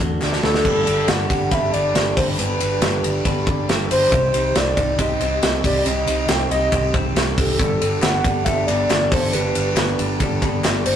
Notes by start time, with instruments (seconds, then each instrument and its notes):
Already playing: clean electric guitar D3 A3
0.00 fingered electric bass E2, clean electric guitar F#3 D4 F#4 A4
0.21 fingered electric bass D2, clean electric guitar A3 D4 F#4 A4, snare, clap
0.32 snare
0.42 fingered electric bass D2, clean electric guitar A3 D4 F#4 A4, soft synth lead A4, snare
0.54 snare
0.64 fingered electric bass G1, clean electric guitar G3 B3 D4 G4 A4 B4, kick, crash
0.86 fingered electric bass G1, clean electric guitar D4 G4 A4, ride
1.08 fingered electric bass G1, clean electric guitar G3 B3 D4 G4 A4, soft synth lead F#5, snare, ride
1.29 fingered electric bass G1, clean electric guitar D4 G4 A4, kick, ride
1.50 fingered electric bass G1, clean electric guitar B3 D4 G4 A4 B4, soft synth lead E5, kick, ride
1.72 fingered electric bass G1, clean electric guitar D4 G4 A4, soft synth lead D5, ride
1.94 fingered electric bass G1, clean electric guitar G3 B3 D4 G4 A4, snare, ride
2.16 fingered electric bass G1, clean electric guitar D4 G4 A4 B4, soft synth lead C5, kick, open hi-hat, ride
2.38 fingered electric bass G1, clean electric guitar G3 B3 D4 G4 A4 B4, soft synth lead B4, hi-hat pedal, ride
2.60 fingered electric bass G1, clean electric guitar D4 G4 A4, ride
2.82 fingered electric bass G1, clean electric guitar G3 B3 D4 G4 A4, snare, ride
3.03 fingered electric bass G1, clean electric guitar D4 G4 A4, ride
3.25 fingered electric bass G1, clean electric guitar B3 D4 G4 A4 B4, kick, ride
3.47 fingered electric bass G1, clean electric guitar D4 G4 A4, kick, ride
3.68 fingered electric bass G1, clean electric guitar G3 B3 D4 G4 A4, snare, ride
3.90 fingered electric bass G1, clean electric guitar D4 A4 B4, soft synth lead C5, open hi-hat, ride
4.12 fingered electric bass C2, clean electric guitar C3 G3 C4 D#4 G4 C5, kick, hi-hat pedal, ride
4.33 fingered electric bass C2, clean electric guitar C4 D#4 G4 C5, ride
4.55 fingered electric bass C2, clean electric guitar C3 G3 C4 D#4 G4 C5, soft synth lead D5, snare, ride
4.77 fingered electric bass C2, clean electric guitar C4 D#4 G4 C5, kick, ride
4.98 fingered electric bass C2, clean electric guitar C4 D#4 G4 C5, soft synth lead D#5, kick, ride
5.20 fingered electric bass C2, clean electric guitar C4 D#4 G4 C5, ride
5.42 fingered electric bass C2, clean electric guitar C3 G3 C4 D#4 G4 C5, snare, ride
5.63 fingered electric bass C2, clean electric guitar C4 D#4 G4 C5, soft synth lead D5, kick, open hi-hat, ride
5.85 fingered electric bass C2, clean electric guitar C3 G3 C4 D#4 G4 C5, soft synth lead D#5, hi-hat pedal, ride
6.07 fingered electric bass C2, clean electric guitar C4 D#4 G4 C5, ride
6.28 fingered electric bass C2, clean electric guitar C3 G3 C4 D#4 G4 C5, soft synth lead G5, snare, ride
6.50 fingered electric bass C2, clean electric guitar C4 D#4 G4 C5, soft synth lead D#5, ride
6.72 fingered electric bass C2, clean electric guitar C4 D#4 G4 C5, kick, ride
6.94 fingered electric bass C2, clean electric guitar C4 D#4 G4 C5, kick, ride
7.15 fingered electric bass C2, clean electric guitar C3 G3 C4 D#4 G4 C5, snare, ride
7.38 fingered electric bass C2, clean electric guitar C4 D#4 G4 C5, soft synth lead A4, kick, open hi-hat, ride
7.59 fingered electric bass G1, clean electric guitar G3 B3 D4 G4 A4, kick, hi-hat pedal, ride
7.80 fingered electric bass G1, clean electric guitar D4 G4 A4, ride
8.02 fingered electric bass G1, clean electric guitar G3 B3 D4 G4 A4, soft synth lead F#5, snare, clap, ride
8.24 fingered electric bass G1, clean electric guitar D4 G4 A4, kick, ride
8.44 fingered electric bass G1, clean electric guitar B3 D4 G4, soft synth lead E5, kick, ride
8.49 clean electric guitar A4
8.67 fingered electric bass G1, clean electric guitar B3 D4 G4 A4, soft synth lead D5, clap, ride
8.90 fingered electric bass G1, clean electric guitar G3 B3 D4 G4 A4, snare, clap, ride
9.11 fingered electric bass G1, clean electric guitar D4 G4 A4, soft synth lead C5, kick, open hi-hat, ride
9.32 fingered electric bass G1, clean electric guitar G3 B3 D4 G4 A4, soft synth lead B4, hi-hat pedal, ride
9.55 fingered electric bass G1, clean electric guitar D4 G4 A4, ride
9.76 fingered electric bass G1, clean electric guitar G3 B3 D4 G4 A4, snare, clap, ride
9.99 fingered electric bass G1, clean electric guitar D4 G4 A4, ride
10.20 fingered electric bass G1, clean electric guitar B3 D4 G4 A4, kick, ride
10.42 fingered electric bass G1, clean electric guitar B3 D4 G4 A4, kick, clap, ride
10.64 fingered electric bass G1, clean electric guitar G3 B3 D4 G4 A4, snare, clap, ride
10.85 fingered electric bass G1, clean electric guitar D4 G4 A4, soft synth lead C5, open hi-hat, ride